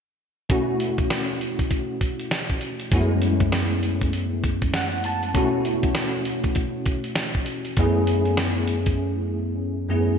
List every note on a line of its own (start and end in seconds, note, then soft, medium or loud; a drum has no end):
0.49 2.88 B2 medium
0.49 2.88 A3 medium
0.49 2.88 C#4 medium
0.49 2.89 E4 medium
0.49 2.89 F#4 medium
0.49 kick loud
0.49 closed hi-hat medium
0.80 closed hi-hat medium
0.98 kick medium
0.98 closed hi-hat soft
1.10 snare loud
1.10 closed hi-hat medium
1.41 closed hi-hat medium
1.59 kick medium
1.59 closed hi-hat soft
1.71 kick medium
1.71 closed hi-hat medium
2.01 kick medium
2.01 closed hi-hat medium
2.19 closed hi-hat soft
2.31 snare loud
2.31 closed hi-hat medium
2.50 kick medium
2.61 closed hi-hat medium
2.80 closed hi-hat medium
2.92 5.30 F#2 medium
2.92 5.31 A3 medium
2.92 5.31 B3 medium
2.92 5.31 C#4 medium
2.92 5.31 E4 medium
2.92 3.01 F#4 medium
2.92 kick loud
2.92 closed hi-hat medium
3.01 5.35 G#3 medium
3.22 closed hi-hat medium
3.40 kick medium
3.40 closed hi-hat soft
3.52 snare loud
3.52 closed hi-hat medium
3.83 closed hi-hat medium
4.01 kick medium
4.01 closed hi-hat medium
4.13 closed hi-hat medium
4.44 kick medium
4.44 closed hi-hat medium
4.62 kick medium
4.62 closed hi-hat soft
4.74 5.03 F#5 medium
4.74 snare loud
4.74 closed hi-hat medium
5.04 5.33 A5 medium
5.04 closed hi-hat medium
5.23 closed hi-hat soft
5.34 7.73 B2 medium
5.34 7.73 A3 medium
5.34 7.73 C#4 medium
5.34 7.74 E4 medium
5.34 7.74 F#4 medium
5.34 kick loud
5.34 closed hi-hat medium
5.65 closed hi-hat medium
5.83 kick medium
5.83 closed hi-hat soft
5.95 snare loud
5.95 closed hi-hat medium
6.25 closed hi-hat medium
6.44 kick medium
6.44 closed hi-hat soft
6.55 kick medium
6.55 closed hi-hat medium
6.86 kick medium
6.86 closed hi-hat medium
7.04 closed hi-hat soft
7.16 snare loud
7.16 closed hi-hat medium
7.35 kick medium
7.46 closed hi-hat medium
7.65 closed hi-hat medium
7.77 9.85 F#2 medium
7.77 7.85 G#3 medium
7.77 9.86 B3 medium
7.77 9.86 C#4 medium
7.77 9.86 E4 medium
7.77 9.86 G#4 medium
7.77 kick loud
7.77 closed hi-hat medium
7.84 9.88 A3 medium
8.07 closed hi-hat medium
8.25 closed hi-hat soft
8.37 snare loud
8.37 closed hi-hat medium
8.67 closed hi-hat medium
8.86 kick medium
8.86 closed hi-hat medium
9.89 10.19 F#2 medium
9.89 10.18 A3 soft
9.89 10.19 B3 medium
9.89 10.19 C#4 soft
9.89 10.19 E4 soft
9.89 10.19 G#4 medium